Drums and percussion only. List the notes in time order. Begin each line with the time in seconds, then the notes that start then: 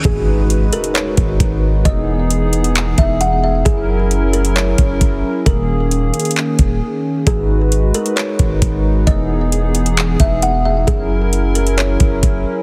0.05 kick, closed hi-hat
0.50 closed hi-hat
0.73 closed hi-hat
0.84 closed hi-hat
0.95 clap, closed hi-hat
1.17 kick, closed hi-hat
1.40 kick, closed hi-hat
1.85 kick, closed hi-hat
2.30 closed hi-hat
2.53 closed hi-hat, open hi-hat
2.64 closed hi-hat
2.75 clap, closed hi-hat
2.98 kick, closed hi-hat
3.21 closed hi-hat
3.66 kick, closed hi-hat
4.11 closed hi-hat
4.33 closed hi-hat
4.45 closed hi-hat
4.56 clap, closed hi-hat
4.78 kick, closed hi-hat
5.01 kick, closed hi-hat
5.46 kick, closed hi-hat
5.91 closed hi-hat
6.14 closed hi-hat, open hi-hat
6.20 closed hi-hat
6.25 closed hi-hat
6.31 closed hi-hat
6.38 clap
6.59 kick, closed hi-hat
7.27 kick, closed hi-hat
7.72 closed hi-hat
7.94 closed hi-hat
8.06 closed hi-hat
8.17 clap, closed hi-hat
8.39 kick, closed hi-hat
8.62 kick, closed hi-hat
9.07 kick, closed hi-hat
9.52 closed hi-hat
9.75 closed hi-hat, open hi-hat
9.86 closed hi-hat
9.97 clap, closed hi-hat
10.20 kick, closed hi-hat
10.42 closed hi-hat
10.88 kick, closed hi-hat
11.33 closed hi-hat
11.55 closed hi-hat
11.67 closed hi-hat
11.78 clap, closed hi-hat
12.00 kick, closed hi-hat
12.23 kick, closed hi-hat